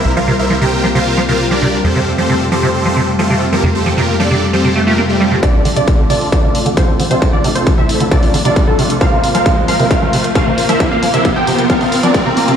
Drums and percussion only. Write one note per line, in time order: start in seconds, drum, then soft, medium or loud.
5.43 kick loud
5.43 closed hi-hat medium
5.65 open hi-hat loud
5.76 closed hi-hat medium
5.88 kick loud
5.88 closed hi-hat medium
6.10 open hi-hat loud
6.21 open hi-hat medium
6.32 kick loud
6.32 closed hi-hat medium
6.55 open hi-hat loud
6.66 closed hi-hat medium
6.77 kick loud
6.77 closed hi-hat medium
7.00 open hi-hat loud
7.11 closed hi-hat medium
7.22 kick loud
7.22 closed hi-hat medium
7.44 open hi-hat loud
7.56 closed hi-hat medium
7.67 kick loud
7.67 closed hi-hat medium
7.89 open hi-hat loud
8.00 closed hi-hat medium
8.11 kick loud
8.11 closed hi-hat medium
8.23 open hi-hat medium
8.34 open hi-hat loud
8.45 closed hi-hat medium
8.56 kick loud
8.56 closed hi-hat medium
8.79 open hi-hat loud
8.90 closed hi-hat medium
9.01 kick loud
9.01 closed hi-hat medium
9.24 open hi-hat loud
9.35 closed hi-hat medium
9.46 kick loud
9.46 closed hi-hat medium
9.68 open hi-hat loud
9.79 open hi-hat medium
9.91 kick loud
9.91 closed hi-hat medium
10.13 open hi-hat loud
10.24 closed hi-hat medium
10.35 kick loud
10.35 closed hi-hat medium
10.58 open hi-hat loud
10.69 closed hi-hat medium
10.80 kick loud
10.80 closed hi-hat medium
11.03 open hi-hat loud
11.14 closed hi-hat medium
11.25 kick loud
11.25 closed hi-hat medium
11.47 open hi-hat loud
11.58 closed hi-hat medium
11.70 kick loud
11.70 closed hi-hat medium
11.81 open hi-hat medium
11.92 open hi-hat loud
12.03 closed hi-hat medium
12.14 kick loud
12.14 closed hi-hat medium
12.37 open hi-hat loud
12.48 closed hi-hat medium